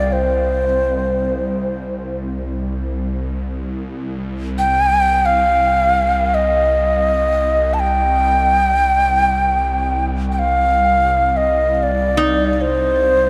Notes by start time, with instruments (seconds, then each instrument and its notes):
Already playing: ambient pad C2, qanun G4 A#4 F5
0.00 native american-style wooden flute D5
0.13 native american-style wooden flute C5
3.43 ambient pad C2
4.59 native american-style wooden flute G5
5.26 native american-style wooden flute F5
6.34 native american-style wooden flute D#5
7.74 native american-style wooden flute A5
7.80 native american-style wooden flute G5
10.32 native american-style wooden flute G5
10.39 native american-style wooden flute F5
11.37 native american-style wooden flute D#5
11.83 native american-style wooden flute D5
12.17 qanun D#4
12.53 native american-style wooden flute D5
12.61 native american-style wooden flute C5